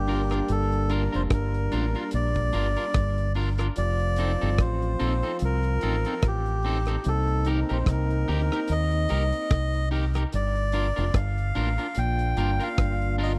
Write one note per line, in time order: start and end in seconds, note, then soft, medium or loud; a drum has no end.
0.00 0.40 G1 medium
0.00 3.32 G3 medium
0.00 3.32 A#3 medium
0.00 3.33 D4 medium
0.00 0.52 G4 loud
0.07 0.20 D4 medium
0.07 0.21 F4 medium
0.07 0.21 A#4 medium
0.07 open hi-hat medium
0.30 0.39 D4 soft
0.30 0.39 F4 medium
0.30 0.38 A#4 medium
0.30 cross-stick medium
0.30 closed hi-hat medium
0.48 1.07 G1 medium
0.48 0.92 A4 loud
0.48 closed hi-hat loud
0.72 closed hi-hat soft
0.89 1.02 D4 medium
0.89 1.02 F4 medium
0.89 1.03 A#4 medium
0.89 1.14 A#4 medium
0.89 closed hi-hat medium
1.12 1.30 F1 medium
1.12 1.21 D4 soft
1.12 1.20 F4 medium
1.12 1.20 A#4 medium
1.12 1.23 C5 medium
1.12 closed hi-hat soft
1.30 1.67 G1 loud
1.30 2.10 A#4 medium
1.30 kick loud
1.30 cross-stick loud
1.30 closed hi-hat medium
1.54 closed hi-hat medium
1.72 1.93 A1 loud
1.72 1.84 D4 medium
1.72 1.85 F4 medium
1.72 1.85 A#4 medium
1.72 closed hi-hat medium
1.95 2.03 D4 soft
1.95 2.03 F4 medium
1.95 2.03 A#4 medium
1.95 closed hi-hat soft
2.11 2.50 A#1 medium
2.11 3.33 D5 loud
2.11 closed hi-hat loud
2.35 kick medium
2.35 closed hi-hat medium
2.52 2.75 G1 medium
2.52 2.66 D4 medium
2.52 2.66 F4 medium
2.52 2.67 A#4 medium
2.52 closed hi-hat medium
2.76 2.85 D4 medium
2.76 2.85 F4 medium
2.76 2.84 A#4 medium
2.76 closed hi-hat medium
2.94 3.68 G1 medium
2.94 kick loud
2.94 cross-stick loud
2.94 closed hi-hat medium
3.18 closed hi-hat soft
3.34 3.48 D4 medium
3.34 3.48 F4 medium
3.34 3.49 A#4 medium
3.34 open hi-hat medium
3.58 3.67 D4 medium
3.58 3.66 F4 medium
3.58 3.66 A#4 medium
3.58 cross-stick medium
3.58 closed hi-hat medium
3.76 4.35 F1 loud
3.76 6.60 F3 medium
3.76 6.60 C4 medium
3.76 6.60 F4 medium
3.76 4.62 D5 loud
3.76 closed hi-hat loud
3.99 closed hi-hat soft
4.16 4.30 C4 medium
4.16 4.31 D#4 medium
4.16 4.31 A4 medium
4.16 closed hi-hat medium
4.41 4.58 G1 medium
4.41 4.49 C4 medium
4.41 4.49 D#4 medium
4.41 4.49 A4 medium
4.41 closed hi-hat soft
4.58 4.96 A1 loud
4.58 5.37 C5 loud
4.58 kick loud
4.58 cross-stick loud
4.58 closed hi-hat medium
4.82 closed hi-hat soft
4.99 5.21 A#1 medium
4.99 5.12 C4 loud
4.99 5.12 D#4 medium
4.99 5.12 A4 loud
4.99 closed hi-hat medium
5.23 5.31 C4 medium
5.23 5.31 D#4 medium
5.23 5.30 A4 medium
5.23 closed hi-hat soft
5.39 5.78 C2 loud
5.39 closed hi-hat loud
5.45 6.27 A#4 loud
5.63 closed hi-hat soft
5.81 6.03 A1 medium
5.81 5.95 C4 medium
5.81 5.95 D#4 medium
5.81 5.95 A4 medium
5.81 closed hi-hat medium
6.05 6.14 C4 medium
6.05 6.13 D#4 medium
6.05 6.13 A4 medium
6.05 closed hi-hat medium
6.22 6.96 A1 medium
6.22 kick loud
6.22 cross-stick loud
6.22 closed hi-hat medium
6.27 7.09 G4 medium
6.46 closed hi-hat soft
6.63 6.77 C4 medium
6.63 6.77 D#4 medium
6.63 6.77 A4 loud
6.63 open hi-hat medium
6.86 6.95 C4 soft
6.86 6.95 D#4 medium
6.86 6.95 A4 medium
6.86 cross-stick medium
6.86 closed hi-hat medium
7.04 7.63 C2 loud
7.04 9.87 A#3 medium
7.04 9.87 C4 medium
7.04 9.87 D#4 loud
7.04 closed hi-hat loud
7.08 7.48 A4 loud
7.27 closed hi-hat soft
7.45 7.58 D#4 medium
7.45 7.59 G4 medium
7.45 7.59 A#4 loud
7.45 closed hi-hat medium
7.50 7.71 A#4 medium
7.69 7.86 A#1 medium
7.69 7.77 D#4 medium
7.69 7.77 G4 medium
7.69 7.76 A#4 medium
7.69 7.89 C5 medium
7.69 closed hi-hat soft
7.86 8.23 C2 medium
7.86 kick loud
7.86 cross-stick loud
7.86 closed hi-hat medium
7.91 8.73 A#4 loud
8.10 closed hi-hat soft
8.28 8.49 D2 medium
8.28 8.40 D#4 medium
8.28 8.41 G4 medium
8.28 8.40 A#4 medium
8.28 open hi-hat medium
8.51 8.59 D#4 medium
8.51 8.59 G4 medium
8.51 8.59 A#4 medium
8.51 cross-stick medium
8.51 closed hi-hat soft
8.68 9.06 D#2 medium
8.68 closed hi-hat loud
8.72 9.89 D#5 loud
8.91 closed hi-hat soft
9.09 9.31 C2 medium
9.09 9.22 D#4 medium
9.09 9.22 G4 medium
9.09 9.22 A#4 medium
9.09 closed hi-hat medium
9.32 closed hi-hat soft
9.51 10.24 C2 medium
9.51 kick loud
9.51 cross-stick loud
9.51 closed hi-hat medium
9.74 closed hi-hat soft
9.91 10.04 D#4 medium
9.91 10.04 G4 medium
9.91 10.04 A#4 medium
9.91 open hi-hat medium
10.14 10.23 D#4 soft
10.14 10.22 G4 medium
10.14 10.22 A#4 medium
10.14 cross-stick medium
10.14 closed hi-hat medium
10.32 10.90 G1 loud
10.32 11.18 D5 loud
10.32 closed hi-hat loud
10.56 closed hi-hat soft
10.72 10.86 D4 medium
10.72 10.86 F4 medium
10.72 10.86 A#4 medium
10.72 closed hi-hat medium
10.96 11.13 F1 medium
10.96 11.04 D4 medium
10.96 11.04 F4 medium
10.96 11.04 A#4 medium
10.96 closed hi-hat soft
11.14 11.51 G1 medium
11.14 11.99 F5 loud
11.14 kick loud
11.14 cross-stick loud
11.14 closed hi-hat medium
11.38 closed hi-hat medium
11.55 11.77 A1 medium
11.55 11.68 D4 medium
11.55 11.68 F4 medium
11.55 11.68 A#4 loud
11.55 closed hi-hat medium
11.78 11.86 D4 medium
11.78 11.86 F4 medium
11.78 11.86 A#4 medium
11.78 closed hi-hat medium
11.95 12.33 A#1 medium
11.95 13.39 A#3 medium
11.95 13.39 D4 medium
11.95 13.39 F4 medium
11.95 12.63 G5 loud
11.95 closed hi-hat loud
12.19 closed hi-hat medium
12.37 12.58 G1 medium
12.37 12.49 D4 medium
12.37 12.50 F4 medium
12.37 12.50 A#4 medium
12.37 closed hi-hat medium
12.60 12.68 D4 medium
12.60 12.68 F4 medium
12.60 12.67 A#4 medium
12.60 13.16 F5 loud
12.60 closed hi-hat soft
12.78 13.39 G1 medium
12.78 kick loud
12.78 cross-stick loud
12.78 closed hi-hat medium
13.02 closed hi-hat soft
13.18 13.31 D4 medium
13.18 13.31 F4 medium
13.18 13.32 A#4 medium
13.18 open hi-hat medium
13.23 13.32 D#5 loud